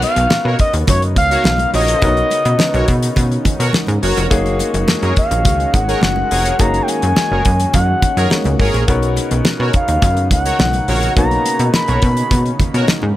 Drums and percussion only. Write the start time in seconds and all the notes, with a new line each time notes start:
0.02 closed hi-hat, muted conga
0.16 closed hi-hat
0.30 snare, high conga
0.59 kick, closed hi-hat
0.73 closed hi-hat
0.87 kick, closed hi-hat, muted conga, low conga
1.02 closed hi-hat
1.16 kick, closed hi-hat, muted conga
1.31 closed hi-hat
1.44 snare, high conga
1.58 closed hi-hat, high conga
1.74 open hi-hat
1.88 closed hi-hat
2.02 kick, closed hi-hat, muted conga
2.17 closed hi-hat
2.31 closed hi-hat, muted conga
2.45 closed hi-hat
2.59 snare, high conga
2.74 closed hi-hat
2.88 kick, closed hi-hat
3.03 closed hi-hat
3.16 kick, closed hi-hat, muted conga, low conga
3.32 closed hi-hat
3.45 kick, closed hi-hat, muted conga, low conga
3.60 closed hi-hat
3.73 snare, high conga
3.87 closed hi-hat, high conga
4.03 open hi-hat
4.17 closed hi-hat
4.31 kick, closed hi-hat, muted conga
4.46 closed hi-hat
4.59 closed hi-hat, muted conga
4.74 closed hi-hat
4.88 snare, high conga
5.02 closed hi-hat
5.16 kick, closed hi-hat
5.31 closed hi-hat
5.45 kick, closed hi-hat, muted conga, low conga
5.60 closed hi-hat
5.74 kick, closed hi-hat, muted conga
5.89 closed hi-hat
6.01 snare, high conga
6.16 high conga
6.31 open hi-hat
6.46 closed hi-hat
6.59 kick, closed hi-hat, muted conga
6.74 closed hi-hat
6.88 closed hi-hat, muted conga
7.02 closed hi-hat
7.16 snare, high conga
7.45 kick, closed hi-hat
7.60 closed hi-hat
7.73 kick, closed hi-hat, muted conga, low conga
8.02 kick, closed hi-hat, muted conga, low conga
8.17 closed hi-hat
8.30 snare, high conga
8.44 closed hi-hat, high conga
8.60 kick, open hi-hat
8.74 closed hi-hat
8.88 kick, closed hi-hat, muted conga
9.02 closed hi-hat
9.16 closed hi-hat, muted conga
9.31 closed hi-hat
9.45 snare, high conga
9.73 kick, closed hi-hat
9.88 closed hi-hat
10.02 kick, closed hi-hat, muted conga, low conga
10.17 closed hi-hat
10.31 kick, closed hi-hat, muted conga
10.46 closed hi-hat
10.59 snare, high conga
10.73 closed hi-hat, high conga
10.88 open hi-hat
11.03 closed hi-hat
11.17 kick, closed hi-hat, muted conga
11.31 closed hi-hat
11.45 closed hi-hat, muted conga
11.59 closed hi-hat
11.74 snare, high conga
11.88 closed hi-hat
12.02 kick, closed hi-hat
12.17 closed hi-hat
12.31 kick, closed hi-hat, muted conga, low conga
12.46 closed hi-hat
12.60 kick, closed hi-hat, muted conga, low conga
12.74 closed hi-hat
12.88 snare, high conga
13.02 high conga